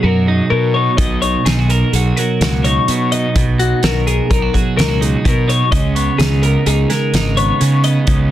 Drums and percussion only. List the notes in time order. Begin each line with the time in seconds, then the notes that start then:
0.98 kick, closed hi-hat
1.22 closed hi-hat
1.46 snare, closed hi-hat
1.70 closed hi-hat
1.93 closed hi-hat
2.17 closed hi-hat
2.41 snare, closed hi-hat
2.65 closed hi-hat
2.88 closed hi-hat
3.12 closed hi-hat
3.36 kick, closed hi-hat
3.60 closed hi-hat
3.83 snare, closed hi-hat
4.07 closed hi-hat
4.31 kick, closed hi-hat
4.54 kick, closed hi-hat
4.79 snare, closed hi-hat
5.02 closed hi-hat
5.25 kick, closed hi-hat
5.49 closed hi-hat
5.72 kick, closed hi-hat
5.96 closed hi-hat
6.19 snare, closed hi-hat
6.43 closed hi-hat
6.66 closed hi-hat
6.90 snare, closed hi-hat
7.14 snare, closed hi-hat
7.37 closed hi-hat
7.61 closed hi-hat
7.84 closed hi-hat
8.07 kick, closed hi-hat